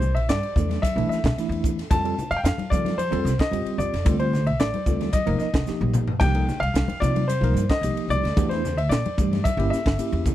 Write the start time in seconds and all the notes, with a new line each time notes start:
Already playing: C2 C5
0.02 hi-hat pedal, low conga
0.15 A#1 E5, ride
0.29 G2 D5, snare, hi-hat pedal, ride
0.43 D4 G4, ride
0.56 E2 E3 A3 D4 A4, kick, hi-hat pedal, low conga
0.69 snare, ride, high conga
0.82 D4 G4 E5, kick, hi-hat pedal, ride, high conga
0.96 A#1 E3 A3 D4 E4, ride
1.09 E5, muted upright bass stroke, snare, hi-hat pedal
1.24 A#1 G4, kick, snare, ride
1.36 E3 A3 D4 E4, muted upright bass stroke, snare, hi-hat pedal, ride
1.49 E2, ride
1.64 kick, hi-hat pedal
1.79 snare, ride
1.91 F2 G3 C4 F4 A4 A5, kick, hi-hat pedal, ride, low conga
2.04 G3 C4 F4 A4, ride
2.18 F4 C5, hi-hat pedal, low conga
2.31 F2 F5, ride
2.36 G5
2.44 F2 F5, snare, hi-hat pedal, ride
2.57 F4 A4, muted upright bass stroke, ride, high conga
2.70 F3 G3 C4 F4 A4 D5, kick, hi-hat pedal, low conga
2.85 snare, ride, high conga
2.98 G4 C5, hi-hat pedal, ride, high conga
3.11 F2 G3 C4 F4 A4, ride
3.25 C2, snare, hi-hat pedal
3.39 C5 D#5, muted upright bass stroke, kick, snare, ride
3.51 F2 G3 C4 F4 G4, hi-hat pedal, ride
3.65 muted upright bass stroke, ride
3.78 F2 D5, hi-hat pedal, low conga
3.94 F2, snare, ride
4.05 D2 G3 C4 F4 A4, kick, hi-hat pedal, ride, low conga
4.19 G3 C4 F4 C5, ride
4.33 F4 B4, snare, hi-hat pedal, low conga
4.47 C2 E5, ride
4.60 A1 D5, snare, hi-hat pedal, ride
4.74 F4 B4, ride, high conga
4.86 D2 G3 C4 F4 A4, kick, hi-hat pedal, low conga
5.01 snare, ride, high conga
5.13 D#4 G4 D#5, kick, hi-hat pedal, ride, high conga
5.26 F1 F3 A#3 D#4 A#4, ride
5.38 D#5, muted upright bass stroke, snare, hi-hat pedal
5.53 F1 A#4, kick, snare, ride
5.66 F3 A#3 D#4 G4, muted upright bass stroke, snare, hi-hat pedal
5.81 A#1, high conga
5.94 hi-hat pedal, mid tom, low conga
6.08 floor tom
6.19 C2 F3 A#3 D#4 G4 G5, kick, hi-hat pedal, ride, crash, low conga
6.34 F3 A#3 D#4 A4, ride
6.48 D#4 G4, snare, hi-hat pedal, low conga
6.60 C2 F5, ride
6.74 C2, snare, hi-hat pedal, ride
6.88 D#4 A#4, muted upright bass stroke, ride, high conga
7.00 C3 F3 A#3 D#4 F4 D5, kick, hi-hat pedal, low conga
7.16 ride, high conga
7.28 D#4 C5, hi-hat pedal, ride, high conga
7.32 A4
7.41 C2 F3 A#3 D#4 A#4, ride
7.54 G2, hi-hat pedal
7.70 A#4 D#5, kick, snare, ride
7.81 C2 F3 A#3 D#4 G4, snare, hi-hat pedal, ride
7.95 muted upright bass stroke, ride
8.08 C2 D5, hi-hat pedal, low conga
8.23 D2, snare, ride
8.37 E2 E3 A3 D4 G4, kick, hi-hat pedal, ride, low conga
8.49 E3 A3 D4 E4 C5, snare, ride
8.64 D4 A4, snare, hi-hat pedal, low conga
8.76 D2 E5, ride
8.89 A#2 D5, snare, hi-hat pedal, ride
9.05 D4 A4, ride, high conga
9.18 G2 E3 A3 D4 G4, kick, hi-hat pedal
9.33 snare, ride, high conga
9.44 G4 E5, muted upright bass stroke, kick, hi-hat pedal, ride, high conga
9.57 G1 A#3 C#4 E4 G4, ride
9.70 E5, muted upright bass stroke, snare, hi-hat pedal
9.86 G1 G4, kick, snare, ride
9.98 A#3 C#4 E4 G4, muted upright bass stroke, hi-hat pedal, ride
10.12 E2, ride
10.25 kick, hi-hat pedal, low conga